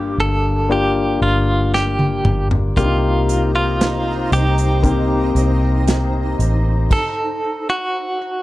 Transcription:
Already playing: G1 G2 A#3 D4 F4 G4, downlifter
0.18 G1 A4
0.69 A#3 D4 F4 G4
1.21 G1 F4
1.74 G4, snare
1.99 high tom
2.25 G1, mid tom
2.51 floor tom
2.77 C2 C3 A#3 C4 D4 D#4 F4 G4 C5 A#5, kick, closed hi-hat
2.84 D#4
3.29 closed hi-hat
3.56 F4
3.81 snare, closed hi-hat
4.32 C2 G4, closed hi-hat
4.58 closed hi-hat
4.83 A#3 C4 D#4 G4, kick, closed hi-hat
5.35 C2, closed hi-hat
5.88 snare, closed hi-hat
6.39 A1, closed hi-hat
6.91 A4, kick, crash
7.70 F#4

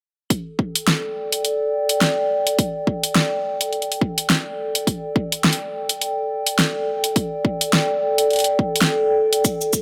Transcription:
0.30 A4, kick, closed hi-hat
0.59 G5, kick
0.75 closed hi-hat
0.81 D5
0.88 snare, closed hi-hat
1.32 closed hi-hat
1.45 closed hi-hat
1.89 closed hi-hat
2.01 snare, closed hi-hat
2.47 closed hi-hat
2.59 kick, closed hi-hat
2.87 kick
3.04 closed hi-hat
3.16 snare
3.61 closed hi-hat
3.73 closed hi-hat
3.82 closed hi-hat
3.92 closed hi-hat
4.01 kick
4.18 closed hi-hat
4.30 snare, closed hi-hat
4.75 closed hi-hat
4.87 kick, closed hi-hat
5.16 kick
5.32 closed hi-hat
5.44 snare
5.53 closed hi-hat
5.89 closed hi-hat
6.01 closed hi-hat
6.47 closed hi-hat
6.59 snare, closed hi-hat
7.04 closed hi-hat
7.16 kick, closed hi-hat
7.45 kick
7.61 closed hi-hat
7.73 snare, closed hi-hat
8.18 closed hi-hat
8.31 closed hi-hat
8.33 closed hi-hat
8.36 closed hi-hat
8.39 closed hi-hat
8.44 closed hi-hat
8.59 kick
8.76 closed hi-hat
8.82 snare, closed hi-hat
9.33 closed hi-hat
9.45 kick, closed hi-hat, cabasa
9.61 cabasa
9.73 kick, cabasa

